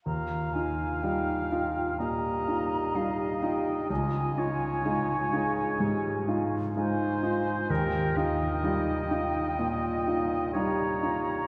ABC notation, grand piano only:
X:1
M:4/4
L:1/8
Q:1/4=63
K:Ebmix
V:1 name="Grand piano"
E,, [EF] [G,EF] [EF] B,, [EF] [G,EF] [EF] | D,, [EF] [A,EF] [EF] A,, [EF] [A,EF] [EF] | E,, [EF] [G,EF] [EF] B,, [EF] [G,EF] [EF] |]